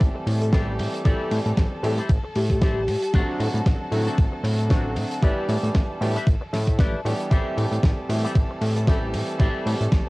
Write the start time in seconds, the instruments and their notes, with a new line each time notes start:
Already playing: grand piano E3 G3 A3 C4 G4, string section A4 A5
0.00 analog synth bass A1, kick, closed hi-hat, ride
0.15 muted clean electric guitar stroke
0.27 analog synth bass A2, muted clean electric guitar stroke, open hi-hat, ride
0.41 soft synth lead A4, muted clean electric guitar stroke, closed hi-hat
0.52 analog synth bass A1, grand piano E3 G3 A3 C4 G4, clean electric guitar E4 G4 A4 C5, soft synth lead A4, kick, snare, closed hi-hat, ride
0.79 analog synth bass A2, open hi-hat, ride
0.93 muted clean electric guitar stroke, closed hi-hat
1.05 analog synth bass A1, grand piano E3 G3 A3 C4 G4, clean electric guitar E4 G4 A4 D5, kick, closed hi-hat, ride
1.31 analog synth bass A2, open hi-hat, ride
1.46 analog synth bass A2, closed hi-hat
1.57 analog synth bass A1, kick, snare, closed hi-hat, ride
1.71 muted clean electric guitar stroke
1.83 analog synth bass A2, grand piano E3 G3 A3 C4 G4, soft synth lead A4, muted clean electric guitar stroke, open hi-hat, ride
1.98 clean electric guitar E4 G4 A4 C5, closed hi-hat
2.09 analog synth bass A1, kick, closed hi-hat, ride
2.24 muted clean electric guitar stroke
2.35 analog synth bass A2, soft synth lead G4, muted clean electric guitar stroke, open hi-hat, ride
2.50 soft synth lead G4, muted clean electric guitar stroke, kick, closed hi-hat
2.61 analog synth bass A1, clean electric guitar E4 G4 A4 C5, soft synth lead G4, kick, snare, closed hi-hat, ride
2.88 analog synth bass A2, open hi-hat, ride
3.02 muted clean electric guitar stroke, closed hi-hat
3.13 analog synth bass A1, grand piano D3 F#3 A3 C4 F#4, clean electric guitar D4 F#4 A4 C5, kick, closed hi-hat, ride
3.40 analog synth bass A2, open hi-hat, ride
3.54 analog synth bass A2, closed hi-hat
3.66 analog synth bass A1, kick, snare, closed hi-hat, ride
3.80 muted clean electric guitar stroke
3.91 analog synth bass A2, grand piano D3 F#3 A3 C4 F#4, muted clean electric guitar stroke, open hi-hat, ride
4.06 clean electric guitar D4 F#4 A4 C5, closed hi-hat
4.18 analog synth bass A1, kick, closed hi-hat, ride
4.32 muted clean electric guitar stroke
4.44 analog synth bass A2, muted clean electric guitar stroke, open hi-hat, ride
4.58 muted clean electric guitar stroke, closed hi-hat
4.70 analog synth bass A1, grand piano D3 F#3 A3 C4 F#4, clean electric guitar D4 F#4 A4 C5, kick, snare, closed hi-hat, ride
4.96 analog synth bass A2, open hi-hat, ride
5.10 muted clean electric guitar stroke, closed hi-hat
5.22 analog synth bass A1, grand piano E3 G3 B3 D4 G4, clean electric guitar E4 G4 B4 D5, kick, closed hi-hat, ride
5.49 analog synth bass A2, open hi-hat, ride
5.63 analog synth bass A2, closed hi-hat
5.75 analog synth bass A1, kick, snare, closed hi-hat, ride
5.89 muted clean electric guitar stroke
6.00 analog synth bass A2, grand piano E3 G3 B3 D4 G4, muted clean electric guitar stroke, open hi-hat, ride
6.15 clean electric guitar E4 G4 B4 E5, closed hi-hat
6.27 analog synth bass A1, kick, closed hi-hat, ride
6.41 muted clean electric guitar stroke
6.53 analog synth bass A2, muted clean electric guitar stroke, snare, open hi-hat, ride
6.67 muted clean electric guitar stroke, kick, closed hi-hat
6.79 analog synth bass A1, clean electric guitar E4 G4 B4 D5, kick, snare, closed hi-hat, ride
7.05 analog synth bass A2, grand piano E3 G3 B3 D4 G4, open hi-hat, ride
7.19 muted clean electric guitar stroke, closed hi-hat
7.30 analog synth bass A1, grand piano E3 G3 A3 C4 G4, clean electric guitar E4 G4 A4 C5, string section A4 A5, kick, closed hi-hat, ride
7.57 analog synth bass A2, open hi-hat, ride
7.71 analog synth bass A2, closed hi-hat
7.83 analog synth bass A1, kick, snare, closed hi-hat, ride
7.98 muted clean electric guitar stroke
8.09 analog synth bass A2, grand piano E3 G3 A3 C4 G4, muted clean electric guitar stroke, open hi-hat, ride
8.24 clean electric guitar E4 G4 A4 C5, closed hi-hat
8.35 analog synth bass A1, kick, closed hi-hat, ride
8.50 muted clean electric guitar stroke
8.61 analog synth bass A2, muted clean electric guitar stroke, open hi-hat, ride
8.76 soft synth lead A4, muted clean electric guitar stroke, closed hi-hat
8.87 analog synth bass A1, grand piano E3 G3 A3 C4 G4, clean electric guitar E4 G4 A4 D5, soft synth lead A4, kick, snare, closed hi-hat, ride
9.14 analog synth bass A2, open hi-hat, ride
9.28 muted clean electric guitar stroke, closed hi-hat
9.38 analog synth bass A1, grand piano E3 G3 A3 C4 G4, clean electric guitar E4 G4 A4 C5, kick, closed hi-hat, ride
9.66 analog synth bass A2, open hi-hat, ride
9.80 analog synth bass A2, closed hi-hat
9.92 analog synth bass A1, kick, snare, closed hi-hat, ride